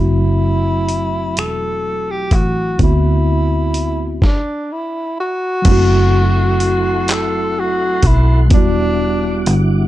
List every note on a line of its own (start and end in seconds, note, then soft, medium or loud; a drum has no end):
0.00 1.37 F#1 medium
0.00 2.73 F#3 medium
0.00 2.75 A3 soft
0.00 2.76 C4 soft
0.00 1.41 E4 medium
0.00 2.77 E4 soft
0.00 2.78 F#4 medium
0.89 closed hi-hat medium
1.37 2.32 E1 medium
1.37 2.12 A4 medium
1.37 finger snap loud
1.37 closed hi-hat medium
2.11 2.37 G4 medium
2.31 2.75 A1 medium
2.31 kick medium
2.31 closed hi-hat medium
2.35 2.81 F#4 medium
2.78 4.18 D2 medium
2.78 4.22 A3 medium
2.78 4.22 B3 medium
2.78 4.23 C4 soft
2.78 4.23 E4 soft
2.78 kick medium
2.78 closed hi-hat medium
2.83 4.20 E4 medium
2.83 4.24 F#4 medium
3.74 closed hi-hat medium
4.22 4.74 D4 medium
4.22 kick medium
4.22 snare medium
4.72 5.19 E4 medium
5.20 7.13 F#4 medium
5.62 7.99 F#1 loud
5.62 8.45 F#3 medium
5.62 5.71 G#3 soft
5.62 9.88 E4 medium
5.62 8.48 A4 medium
5.62 9.88 F#5 medium
5.62 8.48 C6 medium
5.62 kick loud
5.62 closed hi-hat medium
5.62 crash loud
5.66 8.47 C4 medium
5.66 8.49 E4 medium
5.70 8.49 A3 medium
5.70 8.50 F#4 medium
6.60 closed hi-hat medium
7.08 7.61 A4 medium
7.08 clap loud
7.08 closed hi-hat medium
7.60 8.08 F#4 medium
8.03 8.52 B1 loud
8.03 kick medium
8.03 closed hi-hat medium
8.07 8.40 E4 medium
8.48 8.56 F#3 medium
8.48 9.88 G3 medium
8.48 9.88 B3 medium
8.48 9.88 D6 medium
8.48 kick loud
8.48 closed hi-hat medium
8.52 9.46 E1 medium
8.52 9.88 G3 medium
8.52 9.88 D4 medium
8.52 9.56 D4 loud
8.52 9.88 E4 medium
8.57 9.88 F#4 medium
9.46 9.88 G1 medium
9.46 closed hi-hat medium